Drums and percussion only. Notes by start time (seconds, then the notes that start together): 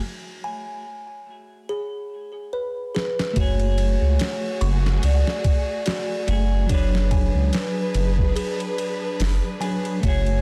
2.96 snare
3.19 snare
3.36 kick, ride
3.60 ride
3.78 ride
4.19 snare, ride
4.61 ride
4.86 snare
5.03 ride
5.27 snare
5.44 kick, ride
5.86 snare, ride
6.28 ride
6.69 kick, ride
6.95 snare
7.11 kick, ride
7.53 snare, ride
7.94 ride
8.18 kick
8.36 ride
8.60 ride
8.78 ride
9.20 snare, open hi-hat
9.62 ride
9.85 ride
10.03 kick, ride
10.26 ride